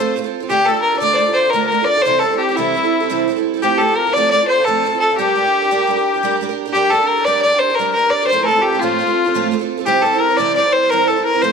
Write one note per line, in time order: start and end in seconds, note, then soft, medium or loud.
0.00 0.16 F3 medium
0.00 0.15 A3 medium
0.00 0.16 C4 medium
0.00 0.16 F4 medium
0.00 0.14 A4 medium
0.00 0.17 A4 medium
0.00 0.12 C5 medium
0.16 0.25 A3 medium
0.16 0.25 C4 medium
0.16 0.25 F4 medium
0.16 0.23 A4 medium
0.24 0.42 C4 soft
0.24 0.41 F4 medium
0.24 0.39 A4 medium
0.40 0.51 C4 soft
0.40 0.50 F4 soft
0.40 0.50 A4 medium
0.50 0.67 D3 medium
0.50 0.65 A3 medium
0.50 0.67 D4 medium
0.50 0.68 F4 medium
0.50 0.68 G4 loud
0.50 0.68 G4 medium
0.50 0.69 A4 medium
0.66 0.76 A3 medium
0.66 0.77 D4 medium
0.66 0.75 F4 medium
0.66 0.81 A4 loud
0.66 1.03 A4 medium
0.66 0.73 A4 medium
0.74 0.94 D4 soft
0.74 0.93 F4 soft
0.74 0.91 A4 soft
0.82 0.99 A#4 medium
0.92 1.01 D4 soft
0.92 1.01 F4 soft
0.92 1.01 A4 soft
0.99 1.19 D3 medium
0.99 1.17 A3 medium
0.99 1.18 D4 medium
0.99 1.19 F4 medium
0.99 1.20 A4 medium
0.99 1.12 D5 loud
0.99 1.17 D5 medium
1.13 1.17 C5 medium
1.13 1.35 D5 loud
1.18 1.27 A3 medium
1.18 1.28 D4 medium
1.18 1.27 F4 medium
1.18 1.26 A4 medium
1.18 1.37 D5 medium
1.27 1.46 D4 soft
1.27 1.46 F4 soft
1.27 1.44 A4 soft
1.34 1.52 C5 medium
1.45 1.53 D4 soft
1.45 1.53 F4 soft
1.45 1.54 A4 medium
1.50 1.71 D3 medium
1.50 1.71 A3 medium
1.50 1.67 A#4 loud
1.54 1.71 D4 medium
1.54 1.72 F4 medium
1.54 1.72 A4 medium
1.54 1.70 A#4 medium
1.67 1.86 A#4 medium
1.71 1.80 A3 medium
1.71 1.81 D4 medium
1.71 1.81 F4 medium
1.71 1.79 A4 medium
1.71 1.88 A#4 medium
1.80 1.99 D4 soft
1.80 1.97 F4 soft
1.80 1.95 A4 medium
1.85 2.03 D5 loud
1.89 2.05 D5 medium
1.97 2.06 D4 soft
1.97 2.07 F4 soft
1.97 2.06 A4 medium
2.02 2.23 C3 medium
2.02 2.21 C5 loud
2.06 2.23 E3 medium
2.06 2.21 G3 medium
2.06 2.22 C4 medium
2.06 2.23 E4 medium
2.06 2.24 A4 medium
2.06 2.22 C5 loud
2.19 2.32 G3 medium
2.19 2.37 A4 medium
2.23 2.32 C4 medium
2.23 2.31 E4 medium
2.23 2.41 A4 medium
2.23 2.30 A4 medium
2.31 2.51 G3 soft
2.31 2.50 C4 medium
2.31 2.49 E4 soft
2.31 2.48 A4 medium
2.38 2.58 G4 medium
2.49 2.57 G3 soft
2.49 2.57 C4 soft
2.49 2.58 E4 soft
2.49 2.58 A4 medium
2.56 2.75 C3 medium
2.56 2.75 E3 medium
2.56 2.73 G3 medium
2.56 2.74 C4 medium
2.56 3.26 E4 medium
2.56 3.24 E4 medium
2.56 2.75 E4 medium
2.56 2.76 A4 medium
2.74 2.83 G3 medium
2.74 2.84 C4 medium
2.74 2.84 E4 medium
2.74 2.82 A4 medium
2.83 3.03 G3 soft
2.83 3.02 C4 soft
2.83 3.01 E4 soft
2.83 2.99 A4 medium
3.00 3.09 G3 soft
3.00 3.10 C4 medium
3.00 3.10 E4 soft
3.00 3.10 A4 medium
3.09 3.27 C3 medium
3.09 3.27 E3 medium
3.09 3.26 G3 medium
3.09 3.28 C4 medium
3.09 3.28 E4 medium
3.09 3.28 A4 medium
3.28 3.36 G3 medium
3.28 3.37 C4 medium
3.28 3.37 E4 medium
3.28 3.35 A4 medium
3.36 3.55 G3 soft
3.36 3.55 C4 soft
3.36 3.54 E4 medium
3.36 3.53 A4 medium
3.54 3.63 G3 soft
3.54 3.62 C4 soft
3.54 3.63 E4 soft
3.54 3.62 A4 medium
3.62 3.79 F3 medium
3.62 3.79 A3 medium
3.62 3.80 C4 medium
3.62 3.80 F4 medium
3.62 3.94 G4 medium
3.62 3.80 G4 loud
3.62 3.81 A4 medium
3.79 3.88 A3 medium
3.79 3.89 C4 medium
3.79 3.89 F4 medium
3.79 3.98 A4 medium
3.83 3.87 A4 medium
3.89 4.07 C4 soft
3.89 4.07 F4 soft
3.89 4.06 A4 medium
3.96 4.15 A#4 medium
3.96 4.13 A#4 medium
4.07 4.16 C4 soft
4.07 4.16 F4 medium
4.07 4.15 A4 medium
4.13 4.32 F3 medium
4.13 4.31 A3 medium
4.13 4.32 C4 medium
4.13 4.30 D5 loud
4.13 4.29 D5 medium
4.18 4.33 F4 medium
4.18 4.33 A4 medium
4.30 4.40 A3 medium
4.30 4.41 C4 medium
4.30 4.49 D5 medium
4.30 4.47 D5 loud
4.35 4.42 F4 medium
4.35 4.40 A4 medium
4.41 4.59 C4 soft
4.41 4.58 F4 soft
4.41 4.57 A4 soft
4.48 4.66 C5 medium
4.48 4.66 C5 loud
4.58 4.67 C4 soft
4.58 4.67 F4 medium
4.58 4.66 A4 soft
4.64 4.84 F3 medium
4.64 4.83 A3 medium
4.64 4.84 C4 medium
4.64 4.85 F4 medium
4.64 5.00 A4 loud
4.64 5.00 A4 medium
4.69 4.85 A4 medium
4.85 4.93 A3 medium
4.85 4.93 C4 medium
4.85 4.93 F4 medium
4.85 4.92 A4 medium
4.93 5.11 C4 soft
4.93 5.11 F4 soft
4.93 5.09 A4 medium
5.00 5.16 A4 medium
5.00 5.19 A4 medium
5.10 5.19 C4 soft
5.10 5.19 F4 soft
5.10 5.18 A4 soft
5.17 5.34 G3 medium
5.17 5.36 D4 medium
5.17 6.35 G4 loud
5.17 6.36 G4 medium
5.17 5.36 G4 medium
5.17 5.37 A#4 medium
5.36 5.44 G3 medium
5.36 5.45 D4 medium
5.36 5.45 G4 medium
5.36 5.43 A#4 medium
5.44 5.63 D4 soft
5.44 5.62 G4 medium
5.44 5.61 A#4 medium
5.62 5.70 D4 medium
5.62 5.71 G4 medium
5.62 5.70 A#4 medium
5.71 5.86 G3 medium
5.71 5.88 D4 medium
5.71 5.88 G4 medium
5.71 5.89 A#4 medium
5.87 5.96 G3 medium
5.87 5.97 D4 medium
5.87 5.97 G4 medium
5.87 5.96 A#4 medium
5.97 6.15 D4 soft
5.97 6.15 G4 soft
5.97 6.13 A#4 medium
6.14 6.23 D4 soft
6.14 6.23 G4 medium
6.14 6.22 A#4 medium
6.23 6.40 G3 medium
6.23 6.40 D4 medium
6.23 6.41 G4 medium
6.23 6.41 A#4 medium
6.41 6.49 G3 medium
6.41 6.49 D4 medium
6.41 6.50 G4 medium
6.41 6.48 A#4 medium
6.49 6.68 D4 soft
6.49 6.66 G4 medium
6.49 6.64 A#4 medium
6.66 6.74 D4 soft
6.66 6.75 G4 medium
6.66 6.74 A#4 medium
6.73 6.90 G3 medium
6.73 6.91 D4 medium
6.73 6.92 G4 loud
6.73 6.90 G4 medium
6.73 6.92 G4 medium
6.73 6.93 A#4 medium
6.90 7.00 G3 medium
6.90 7.01 D4 medium
6.90 7.00 G4 medium
6.90 7.10 A4 loud
6.90 7.24 A4 medium
6.90 6.99 A#4 medium
7.00 7.19 D4 soft
7.00 7.18 G4 soft
7.00 7.16 A#4 medium
7.08 7.26 A#4 medium
7.18 7.26 D4 soft
7.18 7.27 G4 soft
7.18 7.26 A#4 medium
7.25 7.42 G3 medium
7.25 7.44 D4 medium
7.25 7.44 G4 medium
7.25 7.45 A#4 medium
7.25 7.41 D5 loud
7.25 7.43 D5 medium
7.42 7.52 G3 medium
7.42 7.53 D4 medium
7.42 7.53 G4 medium
7.42 7.60 D5 loud
7.42 7.60 D5 medium
7.47 7.51 A#4 medium
7.52 7.71 D4 soft
7.52 7.70 G4 soft
7.52 7.69 A#4 medium
7.59 7.76 C5 loud
7.59 7.79 C5 medium
7.70 7.79 D4 soft
7.70 7.79 G4 soft
7.70 7.78 A#4 medium
7.75 7.92 A#4 loud
7.75 7.94 A#4 medium
7.79 7.95 G3 medium
7.79 7.96 D4 medium
7.79 7.97 G4 medium
7.79 7.97 A#4 medium
7.93 8.04 G3 medium
7.93 8.12 A#4 medium
7.93 8.13 A#4 medium
7.97 8.05 D4 medium
7.97 8.06 G4 medium
7.97 8.04 A#4 medium
8.05 8.24 D4 soft
8.05 8.23 G4 soft
8.05 8.21 A#4 medium
8.10 8.27 D5 loud
8.10 8.30 D5 medium
8.23 8.32 D4 soft
8.23 8.32 G4 soft
8.23 8.31 A#4 medium
8.27 8.45 C5 loud
8.27 8.46 C5 medium
8.32 8.48 A2 medium
8.32 8.49 F3 medium
8.32 8.47 A3 medium
8.32 8.48 C4 medium
8.32 8.49 F4 medium
8.32 8.49 A4 medium
8.43 8.63 A4 loud
8.43 8.46 A#4 medium
8.48 8.56 A3 medium
8.48 8.57 C4 medium
8.48 8.56 F4 medium
8.48 8.66 A4 medium
8.48 8.55 A4 medium
8.56 8.75 A3 soft
8.56 8.74 C4 soft
8.56 8.73 F4 medium
8.56 8.71 A4 medium
8.62 8.82 G4 medium
8.66 8.83 G4 medium
8.73 8.81 A3 soft
8.73 8.82 C4 medium
8.73 8.82 F4 soft
8.73 8.82 A4 medium
8.80 8.99 A2 medium
8.80 8.99 F3 medium
8.80 8.98 A3 medium
8.80 8.99 C4 medium
8.80 9.51 F4 medium
8.80 9.48 F4 medium
8.80 9.00 F4 medium
8.80 9.00 A4 medium
8.99 9.08 A3 medium
8.99 9.08 C4 medium
8.99 9.07 F4 medium
8.99 9.06 A4 medium
9.07 9.26 A3 soft
9.07 9.26 C4 soft
9.07 9.25 F4 soft
9.07 9.23 A4 medium
9.24 9.34 A3 soft
9.24 9.35 C4 medium
9.24 9.34 F4 medium
9.24 9.34 A4 medium
9.34 9.52 A2 medium
9.34 9.52 F3 medium
9.34 9.50 A3 medium
9.34 9.51 C4 medium
9.34 9.52 F4 medium
9.34 9.53 A4 medium
9.51 9.60 A3 medium
9.51 9.60 C4 medium
9.51 9.60 F4 medium
9.51 9.58 A4 medium
9.59 9.79 A3 medium
9.59 9.78 C4 soft
9.59 9.78 F4 medium
9.59 9.76 A4 medium
9.78 9.86 A3 medium
9.78 9.86 C4 soft
9.78 9.87 F4 soft
9.78 9.86 A4 medium
9.86 10.03 C3 medium
9.86 10.04 E3 medium
9.86 10.02 G3 medium
9.86 10.03 C4 medium
9.86 10.04 E4 loud
9.86 10.04 G4 medium
9.86 10.04 G4 loud
9.86 10.05 C5 medium
10.02 10.12 G3 medium
10.02 10.13 C4 medium
10.02 10.13 E4 medium
10.02 10.22 A4 loud
10.02 10.21 A4 medium
10.06 10.12 C5 medium
10.13 10.31 G3 soft
10.13 10.30 C4 medium
10.13 10.29 E4 soft
10.13 10.28 C5 medium
10.20 10.38 A#4 medium
10.20 10.39 A#4 medium
10.29 10.38 G3 soft
10.29 10.39 C4 medium
10.29 10.39 E4 medium
10.29 10.38 C5 medium
10.37 10.56 C3 medium
10.37 10.56 E3 medium
10.37 10.55 G3 medium
10.37 10.56 C4 medium
10.37 10.56 E4 medium
10.37 10.57 C5 medium
10.37 10.55 D5 loud
10.37 10.52 D5 loud
10.54 10.64 G3 medium
10.54 10.65 C4 medium
10.54 10.72 D5 medium
10.54 10.74 D5 loud
10.59 10.65 E4 medium
10.59 10.64 C5 medium
10.65 10.83 G3 soft
10.65 10.83 C4 soft
10.65 10.83 E4 soft
10.65 10.82 C5 medium
10.71 10.90 C5 medium
10.71 10.92 C5 medium
10.83 10.91 G3 soft
10.83 10.92 C4 soft
10.83 10.92 E4 soft
10.83 10.91 C5 soft
10.89 11.08 C3 medium
10.89 11.08 E3 medium
10.89 11.07 G3 medium
10.89 11.09 C4 medium
10.89 11.09 E4 medium
10.89 11.08 A#4 medium
10.89 11.09 A#4 loud
10.94 11.09 C5 medium
11.07 11.16 G3 medium
11.07 11.17 C4 medium
11.07 11.16 E4 medium
11.07 11.23 A4 medium
11.07 11.24 A4 medium
11.11 11.15 C5 medium
11.16 11.35 G3 soft
11.16 11.34 C4 soft
11.16 11.33 E4 medium
11.16 11.32 C5 medium
11.24 11.42 A#4 medium
11.24 11.44 A#4 medium
11.33 11.43 G3 soft
11.33 11.43 C4 medium
11.33 11.43 E4 medium
11.33 11.42 C5 medium
11.42 11.52 F3 medium
11.42 11.52 A3 medium
11.42 11.52 C4 medium
11.42 11.52 F4 medium
11.42 11.52 A4 medium
11.42 11.52 C5 loud
11.42 11.52 C5 medium